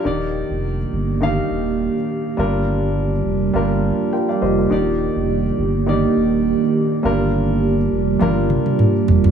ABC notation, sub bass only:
X:1
M:4/4
L:1/16
Q:"Swing 16ths" 1/4=103
K:Eb
V:1 name="Sub bass" clef=bass
E,,,3 F,,,3 G,,,4 E,,,3 z3 | G,,,6 F,,,2 G,,,3 z3 F,,,2 | E,,,3 F,,,3 G,,,4 E,,,3 z3 | G,,,6 F,,,2 G,,,3 z3 F,,,2 |]